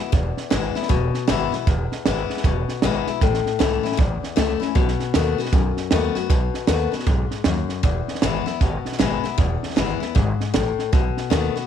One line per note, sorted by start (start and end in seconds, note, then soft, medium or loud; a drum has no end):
0.00 0.13 B3 soft
0.00 0.12 E4 medium
0.12 0.34 E1 medium
0.12 0.87 E2 loud
0.12 kick loud
0.12 snare soft
0.37 muted upright bass stroke medium
0.37 snare soft
0.50 0.73 G#1 medium
0.50 0.74 E3 medium
0.50 0.75 G#3 medium
0.50 0.75 B3 medium
0.50 0.74 E4 loud
0.50 snare loud
0.50 hi-hat pedal loud
0.75 0.90 B3 soft
0.75 0.89 E4 medium
0.75 muted upright bass stroke medium
0.75 snare soft
0.82 snare soft
0.89 1.11 E1 loud
0.89 1.64 B2 loud
0.89 kick loud
0.89 snare soft
1.14 muted upright bass stroke medium
1.14 snare soft
1.28 1.50 G#1 loud
1.28 1.52 E3 medium
1.28 1.52 G#3 medium
1.28 1.52 B3 medium
1.28 1.51 E4 loud
1.28 snare loud
1.28 hi-hat pedal medium
1.52 1.67 B3 soft
1.52 1.66 E4 medium
1.52 muted upright bass stroke medium
1.52 snare soft
1.67 1.88 E1 medium
1.67 2.42 E2 loud
1.67 kick loud
1.67 snare soft
1.92 muted upright bass stroke medium
1.92 snare soft
2.06 2.27 G#1 medium
2.06 2.43 E3 medium
2.06 2.43 G#3 medium
2.06 2.44 B3 medium
2.06 2.44 E4 medium
2.06 snare loud
2.06 hi-hat pedal loud
2.30 snare soft
2.37 snare soft
2.44 2.65 E1 loud
2.44 3.19 B2 medium
2.44 kick loud
2.44 snare soft
2.69 muted upright bass stroke medium
2.69 snare soft
2.82 3.04 G#1 loud
2.82 3.07 E3 medium
2.82 3.07 G#3 medium
2.82 3.07 B3 loud
2.82 3.06 E4 loud
2.82 snare loud
2.82 hi-hat pedal medium
3.07 3.22 B3 soft
3.07 3.21 E4 medium
3.07 muted upright bass stroke medium
3.07 snare soft
3.21 3.42 A1 medium
3.21 3.96 A2 loud
3.21 kick loud
3.21 snare soft
3.34 snare soft
3.45 muted upright bass stroke medium
3.45 snare soft
3.59 3.81 C#2 medium
3.59 3.83 E3 medium
3.59 3.83 A3 medium
3.59 3.84 C#4 medium
3.59 3.82 E4 medium
3.59 snare loud
3.59 hi-hat pedal medium
3.83 3.99 C#4 medium
3.83 3.97 E4 medium
3.83 muted upright bass stroke medium
3.83 snare soft
3.92 snare soft
3.97 4.20 A1 medium
3.97 4.72 E2 medium
3.97 kick loud
3.97 snare soft
4.23 muted upright bass stroke medium
4.23 snare soft
4.36 4.58 C#2 loud
4.36 4.60 E3 medium
4.36 4.60 A3 loud
4.36 4.61 C#4 medium
4.36 4.58 E4 loud
4.36 snare loud
4.36 hi-hat pedal medium
4.60 4.75 C#4 medium
4.60 4.74 E4 medium
4.60 muted upright bass stroke medium
4.60 snare soft
4.75 4.97 B1 medium
4.75 5.50 B2 medium
4.75 kick loud
4.75 snare soft
4.88 snare soft
5.00 muted upright bass stroke medium
5.00 snare soft
5.14 5.35 D#2 medium
5.14 5.37 D#3 medium
5.14 5.38 A3 medium
5.14 5.38 B3 medium
5.14 5.37 F#4 medium
5.14 snare loud
5.14 hi-hat pedal medium
5.38 5.53 B3 soft
5.38 5.52 F#4 medium
5.38 snare soft
5.45 snare soft
5.52 5.74 B1 loud
5.52 6.27 F#2 medium
5.52 kick loud
5.52 snare soft
5.77 muted upright bass stroke medium
5.77 snare soft
5.91 6.12 D#2 loud
5.91 6.14 D#3 medium
5.91 6.15 A3 medium
5.91 6.15 B3 loud
5.91 6.14 F#4 medium
5.91 snare loud
5.91 hi-hat pedal medium
6.15 6.30 B3 medium
6.15 6.29 F#4 medium
6.15 muted upright bass stroke medium
6.15 snare soft
6.30 6.51 B1 medium
6.30 7.04 B2 loud
6.30 kick loud
6.30 snare soft
6.54 muted upright bass stroke medium
6.54 snare soft
6.67 6.89 D#2 medium
6.67 6.91 D#3 medium
6.67 6.92 A3 medium
6.67 6.92 B3 medium
6.67 6.90 F#4 medium
6.67 snare loud
6.67 hi-hat pedal loud
6.92 7.07 B3 soft
6.92 7.06 F#4 medium
6.92 muted upright bass stroke medium
6.92 snare soft
6.99 snare soft
7.07 7.28 B1 loud
7.07 7.44 G#2 medium
7.07 kick loud
7.07 snare soft
7.31 muted upright bass stroke medium
7.31 snare soft
7.44 7.66 D#2 loud
7.44 7.82 F#2 medium
7.44 snare loud
7.44 hi-hat pedal medium
7.69 muted upright bass stroke medium
7.69 snare soft
7.83 8.03 E1 medium
7.83 8.58 E2 loud
7.83 kick loud
7.83 snare soft
8.08 muted upright bass stroke medium
8.08 snare soft
8.15 snare soft
8.22 8.42 G#1 medium
8.22 8.46 E3 medium
8.22 8.46 G#3 medium
8.22 8.47 B3 medium
8.22 8.45 E4 medium
8.22 snare loud
8.22 hi-hat pedal loud
8.46 8.61 B3 soft
8.46 8.60 E4 medium
8.46 muted upright bass stroke medium
8.46 snare soft
8.61 8.80 G#1 medium
8.61 9.35 B2 medium
8.61 kick loud
8.61 snare soft
8.85 muted upright bass stroke medium
8.85 snare soft
8.92 snare soft
8.99 9.19 G#1 medium
8.99 9.23 E3 medium
8.99 9.23 G#3 medium
8.99 9.23 B3 medium
8.99 9.22 E4 medium
8.99 snare loud
8.99 hi-hat pedal medium
9.24 9.39 B3 medium
9.24 9.38 E4 medium
9.24 muted upright bass stroke medium
9.24 snare soft
9.38 9.58 E1 medium
9.38 10.12 E2 medium
9.38 kick loud
9.38 snare soft
9.63 muted upright bass stroke medium
9.63 snare soft
9.70 snare soft
9.76 9.96 G#1 medium
9.76 10.00 E3 medium
9.76 10.00 G#3 medium
9.76 10.01 B3 medium
9.76 9.99 E4 medium
9.76 snare loud
9.76 hi-hat pedal medium
10.00 10.16 B3 soft
10.00 10.14 E4 medium
10.00 muted upright bass stroke medium
10.00 snare soft
10.15 10.35 G#1 loud
10.15 10.52 G#2 medium
10.15 kick loud
10.15 snare soft
10.40 muted upright bass stroke medium
10.40 snare soft
10.54 10.74 A1 loud
10.54 10.91 A2 loud
10.54 snare loud
10.54 hi-hat pedal medium
10.79 muted upright bass stroke medium
10.79 snare soft
10.93 11.12 B1 medium
10.93 11.67 B2 medium
10.93 kick loud
10.93 snare soft
11.17 muted upright bass stroke medium
11.17 snare soft
11.30 11.50 D#2 medium
11.30 11.54 D#3 medium
11.30 11.55 A3 medium
11.30 11.55 B3 medium
11.30 11.54 F#4 medium
11.30 snare loud
11.30 hi-hat pedal medium
11.56 11.67 B3 medium
11.56 11.67 F#4 medium
11.56 muted upright bass stroke medium
11.56 snare soft